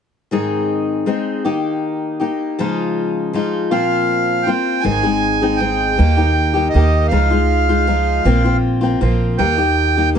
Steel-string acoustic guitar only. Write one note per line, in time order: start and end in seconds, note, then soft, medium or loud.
0.31 1.07 G#2 medium
0.31 1.08 D#3 soft
0.31 1.05 G#3 medium
0.31 1.06 C4 medium
0.31 1.06 D#4 medium
0.31 1.07 G#4 medium
1.06 1.45 G#3 soft
1.06 1.45 C4 soft
1.06 1.44 D#4 soft
1.06 1.44 G#4 soft
1.45 2.21 D#3 soft
1.45 2.20 A#3 soft
1.45 2.20 D#4 soft
1.45 2.18 G4 soft
2.20 2.59 A#3 soft
2.20 2.59 D#4 soft
2.20 2.58 G4 soft
2.59 3.34 C#3 medium
2.59 3.32 F3 medium
2.59 3.33 G#3 medium
2.59 3.34 D#4 medium
2.59 3.34 F4 medium
3.33 3.71 F3 medium
3.33 3.71 G#3 soft
3.33 3.71 D#4 medium
3.33 3.70 F4 medium
3.71 4.48 A#2 soft
3.71 4.48 F3 soft
3.71 4.47 A#3 medium
3.71 4.47 C4 soft
3.71 4.46 F4 medium
4.47 4.84 A#3 soft
4.47 4.83 C4 soft
4.47 4.85 F4 soft
4.83 5.03 G#2 medium
4.83 5.03 D#3 medium
4.83 5.04 G#3 medium
4.83 5.03 C4 medium
4.83 5.03 D#4 medium
4.83 5.02 G#4 medium
5.03 5.42 G#3 soft
5.03 5.42 C4 soft
5.03 5.41 D#4 soft
5.03 5.41 G#4 soft
5.42 5.59 G#3 soft
5.42 5.59 C4 soft
5.42 5.60 D#4 soft
5.42 5.60 G#4 soft
5.60 5.97 G#3 soft
5.60 5.98 C4 soft
5.60 5.97 D#4 soft
5.60 5.99 G#4 medium
5.97 6.17 D#3 medium
5.97 6.18 A#3 medium
5.97 6.16 D#4 medium
5.97 6.15 G4 medium
6.17 6.55 A#3 soft
6.17 6.54 D#4 soft
6.17 6.52 G4 soft
6.54 6.73 A#3 soft
6.54 6.74 D#4 soft
6.54 6.74 G4 soft
6.74 7.11 D#3 soft
6.74 7.11 A#3 soft
6.74 7.11 D#4 soft
6.74 7.12 G4 medium
7.11 7.31 C#3 medium
7.11 7.31 F3 medium
7.11 7.31 G#3 medium
7.11 7.30 D#4 medium
7.11 7.29 F4 medium
7.30 7.69 G#3 soft
7.30 7.68 D#4 soft
7.30 7.68 F4 soft
7.69 7.86 G#3 soft
7.69 7.86 D#4 soft
7.69 7.88 F4 soft
7.87 8.24 F3 soft
7.87 8.25 G#3 soft
7.87 8.25 D#4 medium
7.87 8.25 F4 medium
8.25 8.44 A#2 medium
8.25 8.44 F3 medium
8.25 8.44 A#3 medium
8.25 8.44 C4 medium
8.25 8.43 F4 medium
8.44 8.82 A#3 soft
8.44 8.82 C4 soft
8.44 8.80 F4 soft
8.81 9.00 A#3 soft
8.81 9.00 C4 soft
8.81 9.00 F4 soft
9.01 9.38 F3 medium
9.01 9.38 A#3 soft
9.01 9.39 C4 medium
9.01 9.39 F4 medium
9.39 9.57 D#3 medium
9.39 9.58 A#3 medium
9.39 9.57 D#4 medium
9.39 9.57 G4 medium
9.58 9.96 A#3 soft
9.58 9.96 D#4 soft
9.58 9.95 G4 soft
9.97 10.14 A#3 soft
9.97 10.15 D#4 soft
9.97 10.15 G4 soft
10.15 10.19 D#3 soft
10.15 10.19 A#3 soft